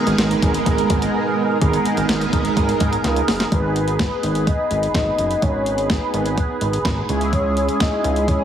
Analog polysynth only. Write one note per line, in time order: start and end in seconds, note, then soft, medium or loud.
0.00 1.58 G#3 medium
0.00 1.58 B3 medium
0.00 1.58 D#4 medium
0.00 1.58 G#4 medium
0.00 1.58 A#4 medium
1.61 3.48 B3 medium
1.61 3.48 D#4 medium
1.61 3.48 G#4 medium
1.61 3.48 A#4 medium
3.52 7.05 B3 medium
3.52 7.05 D#4 medium
3.52 7.05 G#4 medium
3.52 7.05 B4 medium
7.09 8.44 G#3 medium
7.09 8.44 C#4 medium
7.09 8.44 E4 medium
7.09 8.44 G#4 medium